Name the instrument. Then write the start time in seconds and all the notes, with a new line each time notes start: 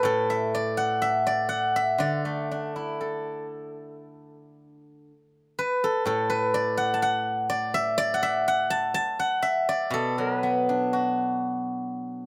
guzheng
Already playing: B4 D5
0.03 A2 A4
0.30 E5
0.55 D5
0.77 F#5
1.02 E5
1.27 D5
1.49 F#5
1.76 E5
1.98 D3 D5
2.25 A3
2.51 D4
2.76 E4
3.01 A4
5.59 B4
5.84 A4
6.05 A2 A4
6.30 B4
6.54 D5
6.77 F#5
6.94 A5
7.02 F#5
7.50 D5
7.74 E5
7.98 D5
8.14 F#5
8.23 E5
8.48 F#5
8.70 A5
8.94 A5
9.19 F#5
9.42 E5
9.69 D5
9.90 B2 A4
10.18 F#3 A#4
10.38 B4
10.43 B3
10.69 D4
10.93 F#4